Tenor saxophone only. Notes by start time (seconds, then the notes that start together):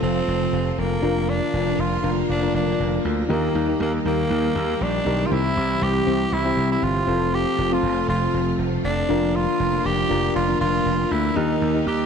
0.03 C4
0.73 C4
0.79 A#3
1.29 D4
1.80 F4
2.30 D4
2.56 D4
3.32 A#3
3.82 A#3
4.07 A#3
4.83 D4
5.26 F4
5.33 E4
5.83 G4
6.33 E4
6.72 E4
6.84 F4
7.34 G4
7.73 F4
8.10 F4
8.85 D4
9.36 F4
9.86 G4
10.36 F4
10.61 F4
11.12 E4
11.37 D#4
11.88 G4